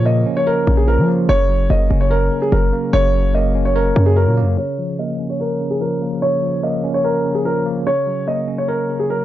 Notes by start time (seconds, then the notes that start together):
Already playing: A#2 C#3 F3 A#3 C#4 C#5
0.05 A#3 D#5
0.26 C#4
0.37 C#5
0.47 A#4 C#5
0.67 A#1 C#3
0.77 G#4
0.88 F3 A#4
0.98 F3
1.08 A#3
1.29 F#1 C#3 C#5
1.49 F#3
1.70 F#1 A#3 D#5
1.90 F#1 C#4
2.01 C#5
2.10 A#4 C#5
2.32 C#3
2.42 G#4
2.52 F#1 F#3 A#4
2.73 A#3
2.93 F#1 C#3 C#5
3.14 F#3
3.34 A#3 D#5
3.55 C#4
3.65 C#5
3.75 A#4 C#5
3.96 F#2 C#3
4.06 G#4
4.16 F#3 A#4
4.27 A#2
4.37 A#3
4.42 F#2
4.58 C#3 C#5
4.79 F3
4.99 A#3 D#5
5.19 C#4
5.30 C#5
5.40 A#4 C#5
5.61 C#3
5.71 G#4
5.81 F3 A#4
6.02 A#3
6.22 C#3 C#5
6.43 F3
6.63 A#3 D#5
6.84 C#4
6.94 C#5
7.04 A#4 C#5
7.25 C#3
7.35 G#4
7.45 F3 A#4
7.66 A#3
7.86 C#3 C#5
8.07 F#3
8.27 A#3 D#5
8.48 C#4
8.58 C#5
8.68 A#4 C#5
8.89 C#3
9.00 G#4
9.10 F#3 A#4